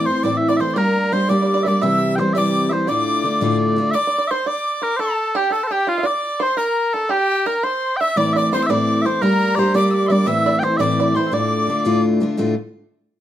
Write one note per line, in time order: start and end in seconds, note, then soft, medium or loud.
0.00 0.23 D5 loud
0.06 0.23 E3 medium
0.06 0.24 A3 medium
0.06 0.23 C4 medium
0.06 0.23 C5 loud
0.06 0.25 C6 medium
0.10 0.24 E4 medium
0.23 0.60 A2 medium
0.23 0.58 E3 medium
0.23 0.60 A3 medium
0.23 0.59 C4 medium
0.23 0.60 E4 medium
0.23 0.37 D5 medium
0.23 0.37 D6 medium
0.37 0.48 E5 loud
0.48 0.57 D5 loud
0.48 0.60 D5 medium
0.48 0.62 D6 medium
0.57 0.76 E3 medium
0.57 0.77 A3 medium
0.57 0.76 C4 medium
0.57 0.74 C5 medium
0.57 0.76 C5 medium
0.57 0.60 E5 medium
0.57 0.70 C6 medium
0.61 0.77 E4 medium
0.70 0.78 D5 loud
0.70 0.79 C6 medium
0.76 1.11 G3 medium
0.76 1.11 A#3 medium
0.76 1.12 D4 medium
0.76 1.13 G4 medium
0.76 1.11 A#4 medium
0.76 1.13 A#4 loud
0.76 1.14 A#5 medium
1.12 1.28 G3 medium
1.12 1.29 A#3 medium
1.12 1.30 D4 medium
1.12 1.30 G4 medium
1.12 1.29 C5 medium
1.12 1.29 C5 loud
1.12 1.31 C6 medium
1.29 1.65 G3 medium
1.29 1.66 A#3 medium
1.29 1.66 D4 medium
1.29 1.67 G4 medium
1.29 1.41 D5 medium
1.29 1.63 D5 medium
1.29 1.66 D6 medium
1.42 1.53 D5 medium
1.54 1.63 D5 medium
1.63 1.82 G3 medium
1.63 1.83 A#3 medium
1.63 1.81 D5 medium
1.63 1.67 E5 loud
1.63 1.85 D6 medium
1.67 1.83 D4 medium
1.67 1.82 G4 medium
1.67 1.82 D5 loud
1.82 2.19 C3 medium
1.82 2.17 E3 medium
1.82 2.18 G3 medium
1.82 2.19 C4 medium
1.82 2.19 G4 medium
1.82 2.17 E5 medium
1.82 2.16 E5 loud
1.82 2.15 E6 loud
2.16 2.35 E3 medium
2.16 2.35 G3 medium
2.16 2.34 C5 medium
2.16 2.33 C5 medium
2.16 2.20 G5 medium
2.20 2.35 C4 medium
2.20 2.36 G4 medium
2.33 2.72 C3 medium
2.33 2.70 E3 medium
2.33 2.71 G3 medium
2.33 2.71 C4 medium
2.33 2.72 G4 medium
2.33 2.70 D5 medium
2.33 2.38 E5 medium
2.33 2.70 D6 medium
2.38 2.69 D5 medium
2.69 2.87 E3 medium
2.69 2.88 G3 medium
2.69 2.89 C4 medium
2.69 2.88 G4 medium
2.69 2.87 C5 medium
2.69 2.89 C5 medium
2.69 2.73 E5 medium
2.87 3.24 D2 medium
2.87 3.25 A2 medium
2.87 3.23 D3 medium
2.87 3.23 A3 medium
2.87 3.25 D4 medium
2.87 3.25 F4 medium
2.87 3.56 D5 medium
2.87 3.91 D5 medium
2.87 3.57 D6 medium
3.24 3.40 D3 medium
3.24 3.41 A3 medium
3.24 3.41 D4 medium
3.24 3.41 F4 medium
3.41 3.77 D2 medium
3.41 3.78 A2 medium
3.41 3.76 D3 medium
3.41 3.77 A3 medium
3.41 3.78 D4 loud
3.41 3.78 F4 medium
3.76 3.94 D3 medium
3.76 3.95 A3 medium
3.76 3.95 D4 medium
3.76 3.95 F4 medium
3.91 4.06 D5 medium
3.91 4.27 D5 loud
3.91 3.95 E5 loud
3.91 4.32 D6 medium
4.07 4.17 D5 medium
4.18 4.29 D5 medium
4.27 4.47 C5 loud
4.27 4.46 C5 medium
4.27 4.31 E5 loud
4.27 4.49 C6 medium
4.46 4.80 D5 medium
4.46 4.83 D5 medium
4.46 5.00 D6 medium
4.82 4.99 A#4 medium
4.82 4.96 A#4 loud
4.96 5.37 A4 medium
4.96 5.37 A4 loud
4.96 5.00 C5 loud
4.96 5.37 A5 medium
5.35 5.51 G4 medium
5.35 5.52 G4 loud
5.35 5.52 G5 medium
5.50 5.70 A4 medium
5.50 5.64 A4 medium
5.50 5.73 A5 medium
5.64 5.72 A4 medium
5.64 5.67 C5 medium
5.71 5.87 G4 medium
5.71 5.89 G4 loud
5.71 5.90 G5 medium
5.87 5.97 F4 medium
5.87 6.06 F4 medium
5.87 6.04 F5 medium
5.98 6.03 E5 soft
6.03 6.38 D5 medium
6.03 6.43 D5 loud
6.03 6.41 D6 medium
6.40 6.56 C5 medium
6.40 6.57 C5 loud
6.40 6.57 C6 medium
6.57 6.91 A#4 medium
6.57 6.94 A#4 medium
6.57 6.90 A#5 medium
6.90 7.11 A4 loud
6.90 7.10 A4 medium
6.90 7.05 A5 medium
6.90 6.95 A#5 medium
7.05 7.14 A5 medium
7.09 7.44 G4 medium
7.09 7.47 G4 loud
7.09 7.48 G5 medium
7.46 7.64 A#4 medium
7.46 7.64 A#4 loud
7.46 7.57 A#5 medium
7.57 7.65 A#5 medium
7.63 7.97 C5 medium
7.63 7.99 C6 medium
7.97 8.17 E5 medium
7.97 8.01 G5 loud
7.97 8.19 E6 loud
8.01 8.17 E5 loud
8.16 8.52 A2 medium
8.16 8.51 E3 medium
8.16 8.53 A3 medium
8.16 8.52 C4 medium
8.16 8.53 E4 medium
8.16 8.33 D5 loud
8.16 8.35 D5 medium
8.16 8.36 D6 medium
8.33 8.51 D5 medium
8.33 8.37 E5 loud
8.33 8.51 D6 medium
8.37 8.54 D5 loud
8.52 8.69 E3 medium
8.52 8.69 A3 medium
8.52 8.69 C4 medium
8.52 8.70 E4 medium
8.52 8.70 C5 medium
8.52 8.67 C5 loud
8.52 8.64 C6 medium
8.63 8.71 E6 medium
8.67 9.05 A2 medium
8.67 9.04 E3 medium
8.67 9.05 A3 medium
8.67 9.04 C4 medium
8.67 9.07 D5 medium
8.67 9.02 D5 loud
8.67 8.70 E5 loud
8.67 9.24 D6 loud
8.71 9.06 E4 medium
9.02 9.21 E3 medium
9.02 9.22 C4 medium
9.02 9.22 C5 medium
9.02 9.06 E5 medium
9.06 9.22 A3 medium
9.06 9.23 E4 medium
9.06 9.21 C5 medium
9.21 9.56 G3 medium
9.21 9.57 A#3 medium
9.21 9.58 D4 medium
9.21 9.59 G4 medium
9.21 9.55 A#4 loud
9.21 9.56 A#4 medium
9.21 9.75 A#5 medium
9.55 9.73 G3 medium
9.55 9.73 A#3 medium
9.55 9.74 D4 medium
9.55 9.75 C5 medium
9.55 9.75 C5 loud
9.55 9.59 D5 loud
9.60 9.74 G4 medium
9.74 10.09 G3 medium
9.74 10.10 A#3 medium
9.74 10.10 D4 medium
9.74 10.11 G4 medium
9.74 10.08 D5 medium
9.74 9.92 D6 medium
9.91 10.08 D6 medium
9.91 9.96 E6 medium
10.06 10.26 G3 medium
10.06 10.26 D5 medium
10.06 10.12 E5 medium
10.06 10.12 C6 medium
10.06 10.29 D6 loud
10.11 10.27 A#3 medium
10.11 10.27 D4 medium
10.11 10.28 G4 medium
10.11 10.27 D5 medium
10.26 10.63 A2 medium
10.26 10.60 E3 medium
10.26 10.63 A3 medium
10.26 10.62 C4 medium
10.26 10.63 E4 medium
10.26 10.45 E5 medium
10.26 10.59 E5 loud
10.26 10.56 E6 loud
10.46 10.64 D5 medium
10.59 10.78 E3 medium
10.59 10.79 C4 medium
10.59 10.79 C5 medium
10.59 10.64 G5 loud
10.64 10.79 A3 medium
10.64 10.79 E4 medium
10.64 10.77 C5 loud
10.77 11.16 A2 medium
10.77 11.13 E3 medium
10.77 11.16 A3 medium
10.77 11.14 C4 medium
10.77 11.16 E4 loud
10.77 10.99 D5 medium
10.77 11.17 D5 loud
10.77 10.81 E5 loud
10.77 11.16 D6 medium
11.00 11.15 D5 medium
11.14 11.32 E3 medium
11.14 11.31 A3 medium
11.14 11.32 C4 medium
11.14 11.33 E4 medium
11.14 11.26 C5 medium
11.14 11.34 C5 medium
11.14 11.35 C6 medium
11.26 11.33 E5 soft
11.32 11.68 D2 medium
11.32 11.69 A2 medium
11.32 11.67 D3 medium
11.32 11.68 A3 medium
11.32 11.69 D4 medium
11.32 11.69 F4 medium
11.32 12.01 D5 medium
11.32 12.02 D5 loud
11.32 12.05 D6 medium
11.67 11.84 D3 medium
11.67 11.85 A3 medium
11.67 11.85 D4 medium
11.67 11.85 F4 medium
11.85 12.21 D2 medium
11.85 12.22 A2 medium
11.85 12.20 D3 medium
11.85 12.21 A3 medium
11.85 12.21 D4 medium
11.85 12.22 F4 loud
12.21 12.37 D3 medium
12.21 12.37 A3 medium
12.21 12.38 D4 medium
12.21 12.38 F4 medium
12.37 12.54 D2 medium
12.37 12.54 A2 medium
12.37 12.54 D3 medium
12.37 12.54 A3 medium
12.37 12.54 D4 medium
12.37 12.54 F4 medium